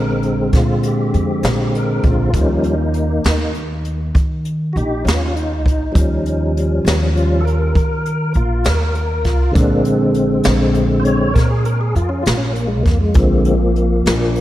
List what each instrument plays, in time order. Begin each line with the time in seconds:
Already playing: upright bass A#1, tonewheel organ D3 G#3 C4 A#4
0.23 closed hi-hat
0.53 upright bass A#2, tonewheel organ F4, kick, snare, closed hi-hat
0.83 tonewheel organ F#4, closed hi-hat
0.88 tonewheel organ G4
1.14 upright bass F2, closed hi-hat
1.43 upright bass A#1, snare, closed hi-hat
1.75 tonewheel organ A#4, closed hi-hat
2.03 upright bass A#1, tonewheel organ F4, kick, closed hi-hat
2.34 upright bass D#2, tonewheel organ F3 G3 A#3 C#4 D#4, kick, closed hi-hat
2.64 closed hi-hat
2.94 closed hi-hat
3.24 upright bass D#2, snare, closed hi-hat
3.54 closed hi-hat
3.85 closed hi-hat
4.15 upright bass D#3, kick, closed hi-hat
4.45 closed hi-hat
4.73 upright bass A#1, tonewheel organ F#4, closed hi-hat
4.77 tonewheel organ D#4 G4
5.05 upright bass D#2, tonewheel organ C#4 F4, snare, closed hi-hat
5.36 tonewheel organ D#4, closed hi-hat
5.65 upright bass A#1, kick, closed hi-hat
5.92 upright bass D#2, tonewheel organ F3 G3 C#4, kick, closed hi-hat
6.26 closed hi-hat
6.57 closed hi-hat
6.85 upright bass D#2, snare, closed hi-hat
7.13 tonewheel organ F3 G3 C#4 F4, closed hi-hat
7.41 tonewheel organ A4
7.45 tonewheel organ A#4, closed hi-hat
7.75 upright bass D#3, kick, closed hi-hat
8.06 closed hi-hat
8.34 upright bass A#1, tonewheel organ F4, closed hi-hat
8.64 upright bass D#2, tonewheel organ A#4, snare, closed hi-hat
8.95 tonewheel organ A#4, closed hi-hat
9.25 upright bass C2, tonewheel organ F4, kick, snare, closed hi-hat
9.51 tonewheel organ D3 G#3 A#3 C4 D4
9.55 upright bass A#1, kick, closed hi-hat
9.85 closed hi-hat
10.14 closed hi-hat
10.44 upright bass A#1, snare, closed hi-hat
10.75 closed hi-hat
11.00 tonewheel organ D3 G#3 C4 C5
11.04 tonewheel organ C#5, closed hi-hat
11.34 upright bass A#2, tonewheel organ A#4, kick, snare, closed hi-hat
11.50 tonewheel organ G#4
11.65 tonewheel organ A#4, closed hi-hat
11.81 tonewheel organ G#4
11.95 upright bass F2, tonewheel organ F4, closed hi-hat
12.09 tonewheel organ C#4
12.23 upright bass A#1, tonewheel organ F4, closed hi-hat
12.27 snare
12.37 tonewheel organ C#4
12.53 tonewheel organ A#3, closed hi-hat
12.67 tonewheel organ G#3
12.83 upright bass F2, tonewheel organ A#3, kick, snare, closed hi-hat
13.01 tonewheel organ G#3
13.14 upright bass A#1, tonewheel organ D3 F3 G#3 A#3 C4, kick, closed hi-hat
13.45 closed hi-hat
13.76 closed hi-hat
14.06 upright bass A#1, snare, closed hi-hat
14.36 closed hi-hat